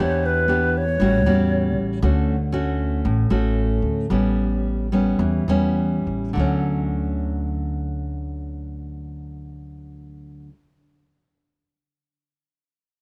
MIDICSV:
0, 0, Header, 1, 4, 480
1, 0, Start_track
1, 0, Key_signature, 2, "major"
1, 0, Tempo, 509338
1, 1901, Time_signature, 4, 2, 24, 8
1, 2866, Tempo, 536673
1, 4786, Tempo, 580271
1, 5746, Tempo, 598802
1, 11092, End_track
2, 0, Start_track
2, 0, Title_t, "Flute"
2, 0, Program_c, 0, 73
2, 5, Note_on_c, 0, 73, 85
2, 245, Note_on_c, 0, 71, 87
2, 259, Note_off_c, 0, 73, 0
2, 731, Note_on_c, 0, 73, 93
2, 745, Note_off_c, 0, 71, 0
2, 1675, Note_off_c, 0, 73, 0
2, 11092, End_track
3, 0, Start_track
3, 0, Title_t, "Nylon-string guitar"
3, 0, Program_c, 1, 24
3, 0, Note_on_c, 1, 52, 59
3, 0, Note_on_c, 1, 59, 53
3, 0, Note_on_c, 1, 62, 57
3, 0, Note_on_c, 1, 67, 61
3, 426, Note_off_c, 1, 59, 0
3, 426, Note_off_c, 1, 62, 0
3, 429, Note_off_c, 1, 67, 0
3, 452, Note_on_c, 1, 59, 54
3, 464, Note_on_c, 1, 62, 55
3, 466, Note_on_c, 1, 67, 62
3, 780, Note_off_c, 1, 59, 0
3, 786, Note_off_c, 1, 62, 0
3, 786, Note_off_c, 1, 67, 0
3, 920, Note_off_c, 1, 52, 0
3, 948, Note_on_c, 1, 45, 52
3, 952, Note_on_c, 1, 55, 55
3, 957, Note_on_c, 1, 66, 61
3, 959, Note_on_c, 1, 61, 53
3, 1148, Note_off_c, 1, 55, 0
3, 1149, Note_off_c, 1, 61, 0
3, 1151, Note_off_c, 1, 66, 0
3, 1190, Note_on_c, 1, 55, 56
3, 1190, Note_on_c, 1, 61, 62
3, 1195, Note_on_c, 1, 66, 64
3, 1865, Note_off_c, 1, 61, 0
3, 1867, Note_off_c, 1, 55, 0
3, 1869, Note_off_c, 1, 66, 0
3, 1881, Note_off_c, 1, 45, 0
3, 1907, Note_on_c, 1, 57, 46
3, 1913, Note_on_c, 1, 50, 47
3, 1917, Note_on_c, 1, 66, 54
3, 1918, Note_on_c, 1, 61, 54
3, 2213, Note_off_c, 1, 57, 0
3, 2218, Note_off_c, 1, 61, 0
3, 2218, Note_off_c, 1, 66, 0
3, 2378, Note_on_c, 1, 57, 51
3, 2380, Note_on_c, 1, 61, 57
3, 2390, Note_on_c, 1, 66, 70
3, 2848, Note_off_c, 1, 50, 0
3, 2872, Note_on_c, 1, 45, 53
3, 3059, Note_off_c, 1, 57, 0
3, 3059, Note_off_c, 1, 61, 0
3, 3064, Note_off_c, 1, 66, 0
3, 3100, Note_on_c, 1, 57, 58
3, 3104, Note_on_c, 1, 61, 58
3, 3111, Note_on_c, 1, 66, 59
3, 3768, Note_off_c, 1, 57, 0
3, 3771, Note_off_c, 1, 61, 0
3, 3774, Note_off_c, 1, 66, 0
3, 3785, Note_off_c, 1, 45, 0
3, 3817, Note_on_c, 1, 45, 48
3, 3818, Note_on_c, 1, 55, 52
3, 3823, Note_on_c, 1, 59, 55
3, 3831, Note_on_c, 1, 61, 51
3, 4502, Note_off_c, 1, 55, 0
3, 4505, Note_off_c, 1, 59, 0
3, 4509, Note_off_c, 1, 61, 0
3, 4547, Note_on_c, 1, 55, 59
3, 4552, Note_on_c, 1, 59, 51
3, 4558, Note_on_c, 1, 61, 65
3, 4767, Note_off_c, 1, 45, 0
3, 4799, Note_on_c, 1, 52, 53
3, 4987, Note_off_c, 1, 55, 0
3, 4990, Note_off_c, 1, 59, 0
3, 4991, Note_off_c, 1, 61, 0
3, 5035, Note_on_c, 1, 55, 58
3, 5039, Note_on_c, 1, 59, 54
3, 5041, Note_on_c, 1, 61, 70
3, 5713, Note_off_c, 1, 55, 0
3, 5715, Note_off_c, 1, 59, 0
3, 5715, Note_off_c, 1, 61, 0
3, 5726, Note_off_c, 1, 52, 0
3, 5732, Note_on_c, 1, 50, 58
3, 5749, Note_on_c, 1, 54, 51
3, 5766, Note_on_c, 1, 57, 64
3, 5783, Note_on_c, 1, 61, 60
3, 9067, Note_off_c, 1, 50, 0
3, 9083, Note_off_c, 1, 54, 0
3, 9101, Note_off_c, 1, 57, 0
3, 9118, Note_off_c, 1, 61, 0
3, 11092, End_track
4, 0, Start_track
4, 0, Title_t, "Upright bass"
4, 0, Program_c, 2, 32
4, 0, Note_on_c, 2, 40, 96
4, 910, Note_off_c, 2, 40, 0
4, 939, Note_on_c, 2, 33, 85
4, 1192, Note_off_c, 2, 33, 0
4, 1192, Note_on_c, 2, 40, 81
4, 1668, Note_off_c, 2, 40, 0
4, 1668, Note_on_c, 2, 33, 88
4, 1888, Note_off_c, 2, 33, 0
4, 1908, Note_on_c, 2, 38, 96
4, 2831, Note_off_c, 2, 38, 0
4, 2873, Note_on_c, 2, 33, 91
4, 3086, Note_off_c, 2, 33, 0
4, 3100, Note_on_c, 2, 33, 84
4, 3536, Note_off_c, 2, 33, 0
4, 3564, Note_on_c, 2, 38, 66
4, 3787, Note_off_c, 2, 38, 0
4, 3813, Note_on_c, 2, 33, 90
4, 4754, Note_off_c, 2, 33, 0
4, 4788, Note_on_c, 2, 40, 91
4, 5005, Note_off_c, 2, 40, 0
4, 5026, Note_on_c, 2, 40, 84
4, 5469, Note_off_c, 2, 40, 0
4, 5512, Note_on_c, 2, 33, 67
4, 5734, Note_off_c, 2, 33, 0
4, 5753, Note_on_c, 2, 38, 79
4, 9055, Note_off_c, 2, 38, 0
4, 11092, End_track
0, 0, End_of_file